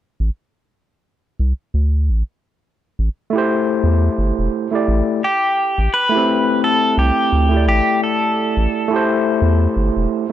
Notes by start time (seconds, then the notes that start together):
0.20 A1
1.39 C2
1.74 D2
2.09 A1
2.99 A1
3.30 A3 E4
3.35 G4 C5
3.84 E2
4.18 G1
4.39 E1
4.71 A3 E4 G4 D5
4.88 A1
5.24 G4
5.78 A1
5.94 B4
6.09 A3 E4
6.14 C4 G4
6.64 A4
6.98 C2 G4
7.32 D2
7.49 A3 E4
7.54 G4 D5
7.67 A1 G4
8.04 A4
8.57 A1
8.88 A3 E4
8.93 G4 C5
9.42 E2
9.76 G1
9.97 E1